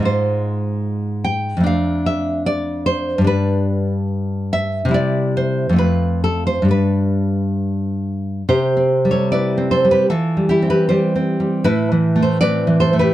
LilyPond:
\new Staff \with { instrumentName = "Nylon-string guitar" } { \time 2/4 \key f \dorian \tempo 4 = 74 << { c''4 r8 g''8 | \key c \major f''8 e''8 d''8 c''8 | b'4 r8 e''8 | d''8 c''8 b'8 a'16 c''16 |
b'4. r8 | <g' c''>8. <a' des''>16 <b' d''>8 <a' c''>16 <g' b'>16 | <f' a'>8 <e' g'>16 <g' b'>16 <g' c''>4 | <e' b'>8. <a' c''>16 <b' d''>8 <a' c''>16 <g' b'>16 | } \\ { <aes, aes f'>2 | <f, a d'>2 | <g, g d'>2 | <c g e'>4 <f, a f'>4 |
<g, g d'>2 | \tuplet 3/2 { c8 c'8 g8 e'8 c'8 g8 } | \tuplet 3/2 { e8 g8 c'8 g8 c'8 g8 } | \tuplet 3/2 { a,8 e8 a8 c'8 e8 a8 } | } >> }